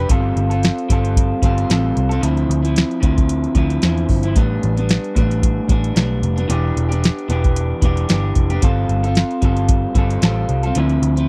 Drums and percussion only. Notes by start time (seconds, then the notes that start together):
0.09 kick, closed hi-hat
0.37 closed hi-hat
0.51 closed hi-hat
0.63 snare, closed hi-hat
0.78 closed hi-hat
0.90 kick, closed hi-hat
1.05 closed hi-hat
1.16 kick, closed hi-hat
1.42 kick, closed hi-hat
1.58 closed hi-hat
1.70 snare, closed hi-hat
1.97 closed hi-hat
2.11 closed hi-hat
2.23 closed hi-hat
2.37 closed hi-hat
2.51 closed hi-hat
2.65 closed hi-hat
2.76 snare, closed hi-hat
2.91 closed hi-hat
3.03 kick, closed hi-hat
3.18 kick, closed hi-hat
3.29 closed hi-hat
3.44 closed hi-hat
3.55 kick, closed hi-hat
3.70 closed hi-hat
3.82 snare, closed hi-hat
3.98 closed hi-hat
4.09 kick, open hi-hat
4.23 closed hi-hat
4.36 kick, closed hi-hat
4.63 closed hi-hat
4.77 closed hi-hat
4.89 snare, closed hi-hat
5.04 closed hi-hat
5.16 kick, closed hi-hat
5.31 closed hi-hat
5.43 kick, closed hi-hat
5.69 kick, closed hi-hat
5.84 closed hi-hat
5.96 snare, closed hi-hat
6.23 closed hi-hat
6.38 closed hi-hat
6.50 closed hi-hat
6.77 closed hi-hat
6.92 closed hi-hat
7.04 snare, closed hi-hat
7.19 closed hi-hat
7.30 closed hi-hat
7.44 kick, closed hi-hat
7.56 closed hi-hat
7.82 kick, closed hi-hat
7.97 closed hi-hat
8.09 snare, closed hi-hat
8.35 kick, closed hi-hat
8.50 closed hi-hat
8.62 kick, closed hi-hat
8.89 closed hi-hat
9.04 closed hi-hat
9.15 snare, closed hi-hat
9.31 closed hi-hat
9.42 kick, closed hi-hat
9.57 closed hi-hat
9.69 kick, closed hi-hat
9.95 kick, closed hi-hat
10.10 closed hi-hat
10.22 snare, closed hi-hat
10.49 closed hi-hat
10.63 closed hi-hat
10.75 closed hi-hat
10.89 closed hi-hat
11.03 closed hi-hat
11.17 closed hi-hat